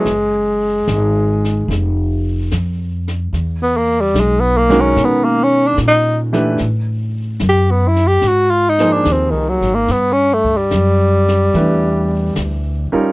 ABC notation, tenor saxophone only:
X:1
M:4/4
L:1/16
Q:"Swing" 1/4=73
K:F#phr
V:1 name="Tenor saxophone"
^G,8- G, z6 z | z B, ^A, G, ^G, B, A, C B, A, C D ^D2 z2 | z4 G B, E G F ^E ^D =D ^B, ^D, F, ^A, | B, C A, G,8- G,2 z3 |]